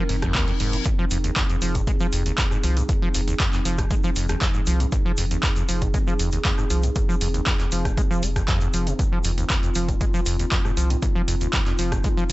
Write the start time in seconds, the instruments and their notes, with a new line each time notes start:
Already playing: ambient pad F3 C4 D#4 A#4, reverse cymbal
0.09 sub bass F1, acid bass G#2, open hi-hat
0.22 acid bass F2, kick, cross-stick, closed hi-hat
0.35 acid bass D#2, kick, clap, open hi-hat
0.48 acid bass F2, closed hi-hat
0.60 sub bass F1, acid bass G#2, open hi-hat
0.73 acid bass A#2, closed hi-hat
0.85 acid bass F2, ambient pad G#4, kick, closed hi-hat, shaker
0.99 acid bass F3
1.11 sub bass F1, acid bass F2, open hi-hat, shaker
1.24 acid bass D#2, closed hi-hat, shaker
1.36 acid bass F2, kick, clap, closed hi-hat, shaker
1.50 acid bass F2, closed hi-hat, shaker
1.62 sub bass F1, acid bass F3, open hi-hat, shaker
1.75 acid bass F#2, kick, closed hi-hat, shaker
1.87 acid bass G#3, kick, closed hi-hat, shaker
2.00 acid bass F3, shaker
2.13 sub bass F1, acid bass F2, open hi-hat, shaker
2.26 acid bass D#2, closed hi-hat, shaker
2.38 acid bass F2, kick, clap, closed hi-hat, shaker
2.51 acid bass G#2, cross-stick, shaker
2.63 sub bass C2, acid bass F3, open hi-hat, shaker
2.77 acid bass F#2, closed hi-hat, shaker
2.89 acid bass F2, kick, closed hi-hat, shaker
3.02 acid bass F3
3.14 sub bass F1, acid bass F2, open hi-hat, shaker
3.28 acid bass D#2, closed hi-hat, shaker
3.40 acid bass F2, kick, clap, closed hi-hat, shaker
3.53 acid bass F2, clap, closed hi-hat, shaker
3.65 sub bass F1, acid bass F3, open hi-hat, shaker
3.78 acid bass F#2, kick, cross-stick, closed hi-hat, shaker
3.91 acid bass G#3, kick, closed hi-hat, shaker
4.04 acid bass F3, shaker
4.16 sub bass F1, acid bass F2, open hi-hat, shaker
4.29 acid bass D#2, cross-stick, closed hi-hat, shaker
4.41 acid bass F2, kick, clap, closed hi-hat, shaker
4.54 acid bass G#2, shaker
4.66 sub bass C2, acid bass F3, open hi-hat, shaker
4.80 acid bass F#2, closed hi-hat, shaker
4.92 acid bass F2, kick, closed hi-hat, shaker
5.05 acid bass F3
5.17 sub bass F1, acid bass F2, open hi-hat, shaker
5.31 acid bass D#2, closed hi-hat, shaker
5.43 acid bass F2, kick, clap, closed hi-hat, shaker
5.56 acid bass F2, closed hi-hat, shaker
5.69 sub bass F1, acid bass F3, open hi-hat, shaker
5.82 acid bass F#2, kick, closed hi-hat, shaker
5.94 acid bass G#3, kick, closed hi-hat, shaker
6.07 acid bass F3, shaker
6.19 sub bass F1, acid bass F2, open hi-hat, shaker
6.32 acid bass D#2, closed hi-hat, shaker
6.45 acid bass F2, kick, clap, closed hi-hat, shaker
6.58 acid bass G#2, cross-stick, shaker
6.70 sub bass C2, acid bass F3, open hi-hat, shaker
6.83 acid bass F#2, closed hi-hat, shaker
6.96 acid bass F2, kick, closed hi-hat, shaker
7.09 acid bass F3, shaker
7.21 sub bass F1, acid bass F2, open hi-hat, shaker
7.34 acid bass D#2, closed hi-hat, shaker
7.47 acid bass F2, kick, clap, closed hi-hat, shaker
7.59 acid bass F2, clap, closed hi-hat, shaker
7.72 sub bass F1, acid bass F3, open hi-hat, shaker
7.85 acid bass F#2, kick, cross-stick, closed hi-hat, shaker
7.97 acid bass G#3, kick, closed hi-hat, shaker
8.11 acid bass F3, shaker
8.23 sub bass F1, acid bass G#3, open hi-hat, shaker
8.36 acid bass F2, kick, cross-stick, closed hi-hat, shaker
8.48 acid bass F2, kick, clap, closed hi-hat, shaker
8.61 acid bass F2, closed hi-hat, shaker
8.74 sub bass F1, acid bass F3, open hi-hat, shaker
8.87 acid bass C3, closed hi-hat, shaker
8.99 acid bass F2, ambient pad F4, kick, closed hi-hat, shaker
9.12 acid bass F3
9.24 sub bass F1, acid bass F2, open hi-hat, shaker
9.38 acid bass D#2, closed hi-hat, shaker
9.50 acid bass F2, kick, clap, closed hi-hat, shaker
9.63 acid bass F2, closed hi-hat, shaker
9.75 sub bass F1, acid bass F3, open hi-hat, shaker
9.88 acid bass F#2, kick, closed hi-hat, shaker
10.01 acid bass G#3, kick, closed hi-hat, shaker
10.14 acid bass F3, shaker
10.26 sub bass F1, acid bass F2, open hi-hat, shaker
10.39 acid bass D#2, closed hi-hat, shaker
10.51 acid bass F2, kick, clap, closed hi-hat, shaker
10.65 acid bass G#2, cross-stick, shaker
10.77 sub bass C2, acid bass F3, open hi-hat, shaker
10.90 acid bass F#2, closed hi-hat, shaker
11.02 acid bass F2, kick, closed hi-hat, shaker
11.15 acid bass F3
11.28 sub bass F1, acid bass F2, open hi-hat, shaker
11.41 acid bass D#2, closed hi-hat, shaker
11.53 acid bass F2, kick, clap, closed hi-hat, shaker
11.66 acid bass F2, clap, closed hi-hat, shaker
11.78 sub bass F1, acid bass F3, open hi-hat, shaker
11.92 acid bass F#2, kick, cross-stick, closed hi-hat, shaker
12.04 acid bass G#3, kick, closed hi-hat, shaker
12.17 acid bass F3, shaker